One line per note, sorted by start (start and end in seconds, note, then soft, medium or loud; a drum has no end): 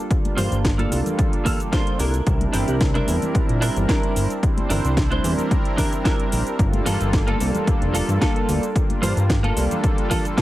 0.10 0.88 G3 medium
0.10 0.89 A#3 medium
0.10 0.89 D4 medium
0.10 0.89 F4 medium
0.10 kick loud
0.10 closed hi-hat medium
0.10 shaker soft
0.25 closed hi-hat soft
0.25 high conga medium
0.37 0.49 G2 medium
0.37 0.58 A#3 loud
0.37 0.58 F4 loud
0.37 0.58 C5 loud
0.37 open hi-hat loud
0.37 low conga medium
0.37 shaker medium
0.52 0.87 G1 medium
0.52 closed hi-hat soft
0.52 shaker soft
0.65 kick loud
0.65 snare loud
0.65 closed hi-hat medium
0.65 shaker soft
0.78 0.98 A#3 medium
0.78 0.99 F4 medium
0.78 0.99 A4 medium
0.78 closed hi-hat soft
0.78 high conga medium
0.91 1.03 C2 loud
0.91 1.98 G3 medium
0.91 1.98 A#3 medium
0.91 1.98 D4 medium
0.91 1.99 F4 medium
0.91 1.99 A4 loud
0.91 open hi-hat medium
0.91 shaker medium
1.06 closed hi-hat soft
1.06 high conga medium
1.06 low conga medium
1.06 shaker soft
1.18 muted clean electric guitar stroke soft
1.18 kick loud
1.18 closed hi-hat medium
1.18 shaker soft
1.33 closed hi-hat soft
1.45 1.60 A#3 loud
1.45 1.60 F4 loud
1.45 1.60 A4 loud
1.45 kick medium
1.45 open hi-hat loud
1.45 low conga medium
1.45 shaker medium
1.60 closed hi-hat soft
1.60 shaker soft
1.72 1.99 A#3 medium
1.72 1.99 F4 medium
1.72 2.00 C5 loud
1.72 kick loud
1.72 snare loud
1.72 closed hi-hat medium
1.72 shaker soft
1.87 closed hi-hat soft
1.99 2.21 C2 loud
1.99 2.43 D4 medium
1.99 2.44 E4 medium
1.99 2.44 A#4 loud
1.99 open hi-hat medium
1.99 shaker medium
2.14 closed hi-hat soft
2.14 shaker soft
2.26 2.48 C2 loud
2.26 3.04 G3 medium
2.26 3.05 C4 medium
2.26 3.05 D4 medium
2.26 3.05 E4 medium
2.26 3.05 A#4 loud
2.26 kick loud
2.26 closed hi-hat medium
2.26 shaker soft
2.41 closed hi-hat soft
2.41 high conga medium
2.53 2.65 G1 medium
2.53 2.74 D4 loud
2.53 2.74 E4 loud
2.53 2.75 G4 loud
2.53 open hi-hat loud
2.53 low conga medium
2.53 shaker medium
2.68 3.03 C2 medium
2.68 closed hi-hat soft
2.68 shaker soft
2.81 kick loud
2.81 snare loud
2.81 closed hi-hat medium
2.81 shaker soft
2.94 3.15 D4 medium
2.94 3.15 E4 medium
2.94 3.15 A#4 loud
2.94 closed hi-hat soft
2.94 high conga medium
3.07 3.19 E2 loud
3.07 4.13 G3 loud
3.07 4.13 C4 medium
3.07 4.13 D4 medium
3.07 4.13 E4 medium
3.07 4.14 A#4 loud
3.07 open hi-hat medium
3.07 shaker medium
3.22 closed hi-hat soft
3.22 high conga medium
3.22 low conga medium
3.22 shaker soft
3.34 3.46 A#1 soft
3.34 muted clean electric guitar stroke soft
3.34 kick loud
3.34 closed hi-hat medium
3.34 shaker soft
3.49 3.70 A#1 medium
3.49 closed hi-hat soft
3.61 3.76 D4 loud
3.61 3.76 E4 loud
3.61 3.77 A#4 loud
3.61 open hi-hat loud
3.61 shaker medium
3.76 3.86 G1 loud
3.76 closed hi-hat soft
3.76 low conga medium
3.76 shaker soft
3.88 4.30 D4 medium
3.88 4.30 E4 medium
3.88 4.31 A#4 medium
3.88 kick loud
3.88 snare loud
3.88 closed hi-hat medium
3.88 shaker soft
4.03 closed hi-hat soft
4.16 4.27 G1 medium
4.16 4.32 G3 medium
4.16 4.32 C4 medium
4.16 4.32 D4 medium
4.16 4.32 E4 medium
4.16 4.32 A#4 medium
4.16 open hi-hat medium
4.16 shaker medium
4.30 closed hi-hat soft
4.30 shaker soft
4.42 5.21 G3 medium
4.42 5.21 C4 medium
4.42 5.21 D4 medium
4.42 5.21 E4 medium
4.42 5.22 C5 medium
4.42 kick loud
4.42 closed hi-hat medium
4.42 shaker soft
4.57 closed hi-hat soft
4.57 high conga medium
4.70 4.81 G1 medium
4.70 4.90 D4 loud
4.70 4.91 E4 loud
4.70 4.91 A#4 loud
4.70 open hi-hat loud
4.70 low conga medium
4.70 shaker medium
4.84 5.20 C2 medium
4.84 closed hi-hat soft
4.84 shaker soft
4.97 kick loud
4.97 snare loud
4.97 closed hi-hat medium
4.97 shaker soft
5.11 5.31 D4 medium
5.11 5.31 E4 medium
5.11 5.32 C5 medium
5.11 closed hi-hat soft
5.11 high conga medium
5.23 5.35 E2 loud
5.23 6.56 G3 medium
5.23 6.56 C4 medium
5.23 6.56 D4 medium
5.23 6.56 E4 medium
5.23 6.57 A#4 loud
5.23 open hi-hat medium
5.23 shaker medium
5.38 closed hi-hat soft
5.38 high conga medium
5.38 low conga medium
5.38 shaker soft
5.51 muted clean electric guitar stroke soft
5.51 kick loud
5.51 closed hi-hat medium
5.51 shaker soft
5.65 closed hi-hat soft
5.77 5.92 D4 loud
5.77 5.92 E4 loud
5.77 5.93 A#4 loud
5.77 kick medium
5.77 open hi-hat loud
5.77 low conga medium
5.77 shaker medium
5.93 closed hi-hat soft
5.93 shaker soft
6.04 6.46 D4 medium
6.04 6.46 E4 medium
6.04 6.47 A#4 loud
6.04 kick loud
6.04 snare loud
6.04 closed hi-hat medium
6.04 shaker soft
6.20 closed hi-hat soft
6.32 6.43 A#1 medium
6.32 open hi-hat loud
6.32 shaker medium
6.47 closed hi-hat soft
6.47 shaker soft
6.58 6.81 G1 loud
6.58 7.37 G3 medium
6.58 7.37 A#3 medium
6.58 7.37 D4 medium
6.58 7.37 F4 medium
6.58 7.38 A4 loud
6.58 kick loud
6.58 closed hi-hat medium
6.58 shaker soft
6.73 closed hi-hat soft
6.73 high conga medium
6.86 6.98 G2 medium
6.86 7.07 A#3 loud
6.86 7.07 F4 loud
6.86 7.07 A4 loud
6.86 open hi-hat loud
6.86 low conga medium
6.86 shaker medium
7.01 7.36 G1 medium
7.01 closed hi-hat soft
7.01 shaker soft
7.13 kick loud
7.13 snare loud
7.13 closed hi-hat medium
7.13 shaker soft
7.27 7.47 A#3 medium
7.27 7.47 F4 medium
7.27 7.48 A4 medium
7.27 closed hi-hat soft
7.27 high conga medium
7.39 7.52 C2 loud
7.39 8.45 G3 loud
7.39 8.45 A#3 medium
7.39 8.45 D4 medium
7.39 8.46 F4 medium
7.39 8.46 A4 loud
7.39 open hi-hat medium
7.39 shaker medium
7.55 closed hi-hat soft
7.55 high conga medium
7.55 low conga medium
7.55 shaker soft
7.67 7.79 F1 soft
7.67 muted clean electric guitar stroke soft
7.67 kick loud
7.67 closed hi-hat medium
7.67 shaker soft
7.82 8.02 F1 medium
7.82 closed hi-hat soft
7.94 8.08 A#3 loud
7.94 8.09 F4 loud
7.94 8.09 A4 loud
7.94 open hi-hat loud
7.94 shaker medium
8.08 8.19 G2 loud
8.08 closed hi-hat soft
8.08 low conga medium
8.08 shaker soft
8.21 8.62 A#3 medium
8.21 8.63 F4 medium
8.21 8.63 A4 loud
8.21 kick loud
8.21 snare loud
8.21 closed hi-hat medium
8.21 shaker soft
8.36 closed hi-hat soft
8.48 8.60 D2 medium
8.48 8.64 G3 medium
8.48 8.64 A#3 medium
8.48 8.64 D4 medium
8.48 8.65 F4 medium
8.48 8.65 A4 medium
8.48 open hi-hat medium
8.48 shaker medium
8.63 closed hi-hat soft
8.63 shaker soft
8.74 9.53 G3 medium
8.74 9.53 A#3 medium
8.74 9.54 D4 medium
8.74 9.54 F4 medium
8.74 kick loud
8.74 closed hi-hat medium
8.74 shaker soft
8.90 closed hi-hat soft
8.90 high conga medium
9.02 9.14 G2 medium
9.02 9.23 A#3 loud
9.02 9.23 F4 loud
9.02 9.23 C5 loud
9.02 open hi-hat loud
9.02 low conga medium
9.02 shaker medium
9.17 9.52 G1 medium
9.17 closed hi-hat soft
9.17 shaker soft
9.30 kick loud
9.30 snare loud
9.30 closed hi-hat medium
9.30 shaker soft
9.43 9.63 A#3 medium
9.43 9.64 F4 medium
9.43 9.64 A4 medium
9.43 closed hi-hat soft
9.43 high conga medium
9.55 9.68 C2 loud
9.55 10.42 G3 medium
9.55 10.42 A#3 medium
9.55 10.42 D4 medium
9.55 10.42 F4 medium
9.55 10.42 A4 loud
9.55 open hi-hat medium
9.55 shaker medium
9.71 closed hi-hat soft
9.71 high conga medium
9.71 low conga medium
9.71 shaker soft
9.83 muted clean electric guitar stroke soft
9.83 kick loud
9.83 closed hi-hat medium
9.83 shaker soft
9.98 closed hi-hat soft
10.10 10.25 A#3 loud
10.10 10.25 F4 loud
10.10 10.25 A4 loud
10.10 kick medium
10.10 open hi-hat loud
10.10 low conga medium
10.10 shaker medium
10.25 closed hi-hat soft
10.25 shaker soft
10.37 10.42 A#3 medium
10.37 10.42 F4 medium
10.37 10.42 A4 medium
10.37 kick loud
10.37 snare loud
10.37 closed hi-hat medium
10.37 shaker soft